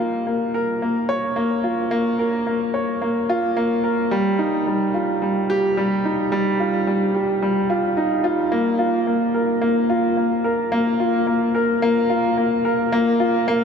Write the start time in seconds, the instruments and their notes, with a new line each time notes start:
Already playing: grand piano A#3
0.00 analog synth bass A#1, grand piano F4
0.27 grand piano A#3
0.54 analog synth bass A#1, grand piano A#4
0.82 grand piano A#3
1.09 analog synth bass G#1, grand piano C#5
1.36 grand piano A#3
1.64 analog synth bass A#1, grand piano F4
1.91 grand piano A#3
2.19 analog synth bass A#1, grand piano A#4
2.47 grand piano A#3
2.74 analog synth bass A#1, grand piano C#5
3.02 grand piano A#3
3.29 analog synth bass G#1, grand piano F4
3.57 grand piano A#3
3.84 analog synth bass A#1, grand piano A#4
4.11 grand piano G3
4.39 analog synth bass A#1, grand piano D#4
4.67 grand piano G3
4.94 grand piano F4
5.22 grand piano G3
5.50 analog synth bass A#1, grand piano G4
5.77 grand piano G3
6.05 grand piano D#4
6.32 grand piano G3
6.60 analog synth bass A#1, grand piano F4
6.87 grand piano G3
7.15 analog synth bass A#1, grand piano G4
7.42 grand piano G3
7.70 analog synth bass A#1, grand piano F4
7.97 grand piano D#4
8.24 analog synth bass A#1, grand piano F4
8.52 grand piano A#3
8.79 analog synth bass A#1, grand piano F4
9.07 grand piano A#3
9.34 analog synth bass A#1, grand piano A#4
9.61 grand piano A#3
9.90 analog synth bass G#1, grand piano F4
10.17 grand piano A#3
10.44 analog synth bass A#1, grand piano A#4
10.72 grand piano A#3
11.00 analog synth bass A#1, grand piano F4
11.27 grand piano A#3
11.55 analog synth bass A#1, grand piano A#4
11.82 grand piano A#3
12.10 grand piano F4
12.37 grand piano A#3
12.65 analog synth bass A#1, grand piano A#4
12.92 grand piano A#3
13.20 analog synth bass A#1, grand piano F4
13.48 grand piano A#3